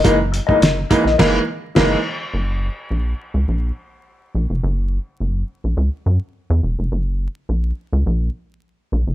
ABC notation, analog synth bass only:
X:1
M:4/4
L:1/16
Q:1/4=105
K:F#mix
V:1 name="Analog synth bass" clef=bass
F,,,3 z F,,,2 z A,,, F,,,2 z2 F,,,2 z2 | F,,,3 z A,,,2 z C,, A,,,2 z4 A,,, ^E,,, | F,,,3 z F,,,2 z A,,, C,, z F,, z2 E,, E,,, ^E,,, | F,,,3 z A,,,2 z C,, A,,,2 z4 A,,, ^E,,, |]